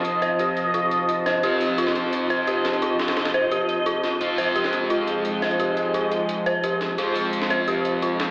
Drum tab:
HH |x-x-x-x-x-x-x-x-|x-o-x-x-x-x-x-xx|x-xxxxx-x-x-x-x-|x-o-x-x-x-x-x-xx|
SD |--------------o-|-----o--------o-|--oooo--------o-|-----o--------o-|

HH |x-x-x-x-x-x-x-x-|x-o-x-x-x-x-x-x-|
SD |--------------o-|-----o--------o-|